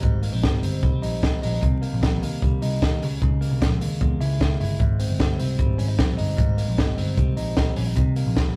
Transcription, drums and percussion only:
0.03 kick medium
0.03 closed hi-hat medium
0.23 open hi-hat medium
0.43 kick loud
0.43 snare loud
0.43 closed hi-hat medium
0.63 open hi-hat medium
0.83 kick medium
0.83 closed hi-hat medium
1.03 open hi-hat medium
1.23 kick loud
1.23 snare loud
1.23 closed hi-hat medium
1.43 open hi-hat medium
1.63 kick medium
1.63 closed hi-hat medium
1.83 open hi-hat medium
2.03 kick loud
2.03 snare loud
2.03 closed hi-hat medium
2.23 open hi-hat medium
2.42 kick medium
2.42 closed hi-hat medium
2.62 open hi-hat medium
2.82 kick loud
2.82 snare loud
2.82 closed hi-hat medium
3.02 open hi-hat medium
3.22 kick medium
3.22 closed hi-hat medium
3.42 open hi-hat medium
3.62 kick loud
3.62 snare loud
3.62 closed hi-hat medium
3.81 open hi-hat medium
4.01 kick medium
4.01 closed hi-hat medium
4.21 open hi-hat medium
4.41 kick loud
4.41 snare loud
4.41 closed hi-hat medium
4.61 open hi-hat medium
4.80 kick medium
4.80 closed hi-hat medium
5.00 open hi-hat medium
5.20 kick loud
5.20 snare loud
5.20 closed hi-hat medium
5.39 open hi-hat medium
5.59 kick loud
5.59 closed hi-hat medium
5.79 open hi-hat medium
5.99 kick loud
5.99 snare loud
5.99 closed hi-hat medium
6.18 open hi-hat medium
6.38 kick loud
6.38 closed hi-hat medium
6.58 open hi-hat medium
6.78 kick medium
6.78 snare loud
6.78 closed hi-hat medium
6.98 open hi-hat medium
7.17 kick loud
7.17 closed hi-hat medium
7.37 open hi-hat medium
7.57 kick loud
7.57 snare loud
7.57 closed hi-hat medium
7.76 open hi-hat medium
7.96 kick medium
7.96 closed hi-hat medium
8.16 open hi-hat medium
8.37 kick loud
8.37 snare loud
8.37 closed hi-hat medium

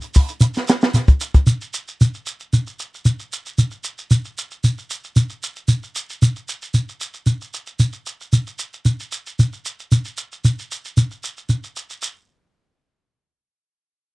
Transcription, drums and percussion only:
0.01 closed hi-hat soft
0.01 shekere soft
0.14 kick medium
0.14 open hi-hat medium
0.14 shekere medium
0.28 closed hi-hat soft
0.28 shekere soft
0.41 closed hi-hat medium
0.41 shekere medium
0.54 snare soft
0.54 closed hi-hat soft
0.54 shekere soft
0.68 snare medium
0.68 closed hi-hat soft
0.68 shekere medium
0.81 snare medium
0.81 shekere soft
0.94 snare soft
0.94 closed hi-hat medium
0.94 shekere medium
1.08 kick medium
1.08 closed hi-hat soft
1.08 shekere soft
1.21 closed hi-hat soft
1.21 shekere medium
1.34 kick medium
1.34 closed hi-hat soft
1.34 shekere soft
1.47 shekere medium
1.62 shekere soft
1.74 shekere medium
1.88 shekere soft
2.01 shekere medium
2.14 shekere soft
2.26 shekere medium
2.40 shekere soft
2.53 shekere medium
2.67 shekere soft
2.79 shekere medium
2.94 shekere soft
3.05 shekere medium
3.19 shekere soft
3.33 shekere medium
3.46 shekere soft
3.58 shekere medium
3.71 shekere soft
3.84 shekere medium
3.98 shekere soft
4.11 shekere medium
4.25 shekere soft
4.38 shekere medium
4.51 shekere soft
4.64 shekere medium
4.78 shekere soft
4.90 shekere medium
5.04 shekere soft
5.16 shekere medium
5.30 shekere soft
5.43 shekere medium
5.56 shekere soft
5.68 shekere medium
5.83 shekere soft
5.95 shekere medium
6.10 shekere soft
6.22 shekere medium
6.36 shekere soft
6.49 shekere medium
6.62 shekere soft
6.74 shekere medium
6.89 shekere soft
7.01 shekere medium
7.14 shekere soft
7.26 shekere medium
7.41 shekere soft
7.54 shekere medium
7.67 shekere soft
7.80 shekere medium
7.93 shekere soft
8.06 shekere medium
8.21 shekere soft
8.33 shekere medium
8.47 shekere soft
8.59 shekere medium
8.74 shekere soft
8.85 shekere medium
9.00 shekere soft
9.12 shekere medium
9.27 shekere soft
9.39 shekere medium
9.53 shekere soft
9.65 shekere medium
9.80 shekere soft
9.92 shekere medium
10.05 shekere soft
10.17 shekere medium
10.32 shekere soft
10.45 shekere medium
10.59 shekere soft
10.71 shekere medium
10.85 shekere soft
10.97 shekere medium
11.11 shekere soft
11.23 shekere medium
11.37 shekere soft
11.49 shekere medium
11.64 shekere soft
11.76 shekere medium
11.90 shekere soft
12.02 shekere medium

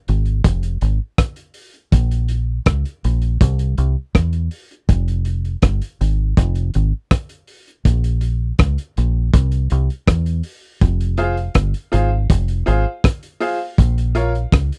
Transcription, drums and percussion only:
0.08 closed hi-hat medium
0.25 closed hi-hat soft
0.44 kick loud
0.44 closed hi-hat loud
0.63 closed hi-hat medium
0.81 closed hi-hat medium
1.18 kick loud
1.18 cross-stick loud
1.18 closed hi-hat loud
1.36 closed hi-hat medium
1.54 open hi-hat medium
1.74 closed hi-hat soft
1.92 kick medium
1.92 closed hi-hat medium
2.11 closed hi-hat medium
2.28 closed hi-hat medium
2.66 kick loud
2.66 cross-stick loud
2.66 closed hi-hat medium
2.85 closed hi-hat medium
3.04 closed hi-hat medium
3.22 closed hi-hat soft
3.41 kick loud
3.41 closed hi-hat loud
3.59 closed hi-hat medium
3.78 closed hi-hat medium
4.15 kick loud
4.15 cross-stick loud
4.15 closed hi-hat loud
4.33 closed hi-hat soft
4.51 open hi-hat medium
4.71 closed hi-hat soft
4.89 kick loud
4.89 closed hi-hat medium
5.08 closed hi-hat medium
5.25 closed hi-hat medium
5.45 closed hi-hat soft
5.62 kick loud
5.62 cross-stick loud
5.62 closed hi-hat loud
5.82 closed hi-hat medium
6.01 closed hi-hat medium
6.37 kick loud
6.37 closed hi-hat medium
6.55 closed hi-hat medium
6.74 closed hi-hat medium
7.11 kick loud
7.11 cross-stick loud
7.11 closed hi-hat loud
7.29 closed hi-hat medium
7.47 open hi-hat medium
7.68 closed hi-hat soft
7.85 kick medium
7.85 closed hi-hat medium
8.04 closed hi-hat medium
8.21 closed hi-hat medium
8.59 kick loud
8.59 cross-stick loud
8.59 closed hi-hat medium
8.78 closed hi-hat medium
8.97 closed hi-hat medium
9.34 kick loud
9.34 closed hi-hat loud
9.52 closed hi-hat medium
9.70 closed hi-hat medium
9.90 closed hi-hat soft
10.07 kick loud
10.07 cross-stick loud
10.07 closed hi-hat loud
10.26 closed hi-hat medium
10.43 open hi-hat medium
10.81 kick loud
10.81 closed hi-hat medium
11.01 closed hi-hat medium
11.17 closed hi-hat medium
11.37 closed hi-hat soft
11.54 kick loud
11.54 cross-stick loud
11.54 closed hi-hat loud
11.74 closed hi-hat medium
11.93 closed hi-hat medium
12.30 kick loud
12.30 closed hi-hat loud
12.48 closed hi-hat medium
12.67 closed hi-hat medium
13.04 kick loud
13.04 cross-stick loud
13.04 closed hi-hat loud
13.23 closed hi-hat medium
13.40 open hi-hat medium
13.78 kick loud
13.78 closed hi-hat medium
13.98 closed hi-hat medium
14.15 closed hi-hat medium
14.35 closed hi-hat soft
14.52 kick loud
14.52 cross-stick loud
14.52 closed hi-hat loud
14.72 closed hi-hat medium

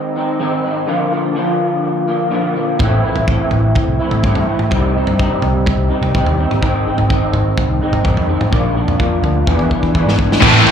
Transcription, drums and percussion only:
2.79 kick medium
2.79 floor tom medium
3.16 floor tom medium
3.28 kick medium
3.51 floor tom medium
3.75 kick medium
3.75 floor tom medium
4.11 floor tom medium
4.23 kick medium
4.23 mid tom medium
4.35 floor tom medium
4.59 mid tom medium
4.71 kick medium
4.71 floor tom medium
5.07 floor tom medium
5.19 kick medium
5.42 floor tom medium
5.66 kick medium
5.66 floor tom medium
6.03 floor tom medium
6.15 kick medium
6.15 mid tom medium
6.26 floor tom medium
6.51 mid tom medium
6.63 kick medium
6.63 floor tom medium
6.98 floor tom medium
7.10 kick medium
7.34 floor tom medium
7.58 kick medium
7.58 floor tom medium
7.93 floor tom medium
8.05 kick medium
8.05 mid tom medium
8.17 floor tom medium
8.41 mid tom medium
8.53 kick medium
8.53 floor tom medium
8.88 floor tom medium
9.00 kick medium
9.24 floor tom medium
9.47 kick medium
9.59 kick soft
9.71 kick medium
9.83 kick medium
9.95 kick medium
10.09 snare medium
10.19 kick medium
10.32 snare medium
10.42 kick loud
10.42 crash loud
10.67 ride medium

